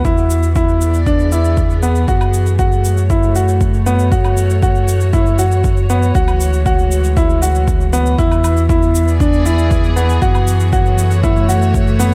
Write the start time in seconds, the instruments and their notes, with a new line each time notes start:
Already playing: string section E3 F#4
0.05 sub bass E2, grand piano E4, kick, shaker
0.15 string section B3, shaker
0.30 shaker
0.43 shaker
0.56 grand piano E4, kick, shaker
0.69 shaker
0.75 string section D5
0.81 shaker
0.89 string section G#4
0.94 shaker
1.06 grand piano D4, kick, shaker
1.19 shaker
1.32 grand piano E4, shaker
1.45 shaker
1.57 kick, shaker
1.70 shaker
1.83 grand piano B3, shaker
1.96 shaker
2.08 sub bass F#2, grand piano F#4, kick, shaker
2.21 low woodblock, shaker
2.34 shaker
2.41 string section A3
2.46 shaker
2.59 grand piano F#4, kick, shaker
2.72 shaker
2.85 shaker
2.97 string section C#5, shaker
3.07 grand piano E4, string section F#4, kick, shaker
3.23 shaker
3.36 grand piano F#4, shaker
3.48 shaker
3.61 kick, shaker
3.74 shaker
3.86 grand piano B3, shaker
3.99 shaker
4.12 grand piano F#4, kick, shaker
4.25 low woodblock, shaker
4.37 shaker
4.50 shaker
4.63 grand piano F#4, kick, shaker
4.75 shaker
4.88 shaker
5.01 shaker
5.13 grand piano E4, kick, shaker
5.26 shaker
5.39 grand piano F#4, shaker
5.52 shaker
5.64 kick, shaker
5.77 shaker
5.90 grand piano B3, shaker
6.03 shaker
6.15 sub bass D2, string section E3, grand piano F#4, kick, shaker
6.28 low woodblock, shaker
6.37 string section G#3, shaker
6.53 shaker
6.66 grand piano F#4, kick, shaker
6.79 shaker
6.91 shaker
7.04 shaker
7.17 grand piano E4, kick, shaker
7.30 shaker
7.42 grand piano F#4, shaker
7.55 shaker
7.68 kick, shaker
7.81 shaker
7.93 grand piano B3, shaker
8.06 shaker
8.19 sub bass E2, grand piano E4, kick, shaker
8.26 string section B3
8.32 low woodblock, shaker
8.44 low woodblock, shaker
8.57 shaker
8.69 grand piano E4, kick, shaker
8.82 shaker
8.95 shaker
9.08 string section G#4 D5, shaker
9.20 grand piano D4, kick, shaker
9.33 shaker
9.46 grand piano E4, shaker
9.59 shaker
9.71 kick, shaker
9.84 shaker
9.96 grand piano B3, shaker
10.09 shaker
10.22 sub bass F#2, grand piano F#4, kick, shaker
10.35 low woodblock, shaker
10.39 string section F#4
10.47 shaker
10.60 shaker
10.68 string section A3 C#5
10.73 grand piano F#4, kick, shaker
10.86 shaker
10.98 shaker
11.11 shaker
11.23 grand piano E4, kick, shaker
11.36 shaker
11.49 grand piano F#4, shaker
11.62 shaker
11.74 kick, shaker
11.87 shaker
11.99 grand piano B3, shaker